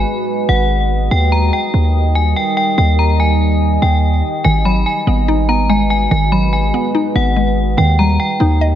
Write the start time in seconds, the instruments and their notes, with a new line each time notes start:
Already playing: ambient pad G#3 F#4 B4 D#5, synth bell G#5
0.49 808-style bass G#1, synth bell F#5
1.11 808-style bass D#2, ambient pad G3 D#4 A#4, synth bell G5
1.32 synth bell A#5
1.53 synth bell G5
1.74 808-style bass D#2
2.15 synth bell G#5
2.36 synth bell G5
2.57 synth bell G5
2.78 808-style bass D#2, synth bell G5
2.99 synth bell A#5
3.20 synth bell G#5
3.82 808-style bass D#2, synth bell G5
4.44 808-style bass G#1, synth pluck D#3, ambient pad G#3 F#4 B4, synth bell G#5
4.65 synth pluck F#3, synth bell B5
4.86 synth bell G#5
5.07 808-style bass G#1, synth pluck B3
5.28 synth pluck D#4
5.49 synth pluck B3, synth bell A#5
5.70 synth pluck G#3, synth bell G#5
5.90 synth bell G#5
6.11 808-style bass G#1, synth pluck D#3, synth bell G#5
6.32 synth pluck F#3, synth bell B5
6.53 synth bell G#5
6.74 synth pluck B3
6.95 synth pluck D#4
7.15 808-style bass G#1, synth pluck B3, synth bell F#5
7.36 synth pluck G#3
7.77 808-style bass D#2, synth pluck D#3, ambient pad G3 D#4 A#4 D#5, synth bell G5
7.99 synth pluck G3, synth bell A#5
8.20 synth bell G5
8.40 808-style bass D#2, synth pluck D#4
8.61 synth pluck D#5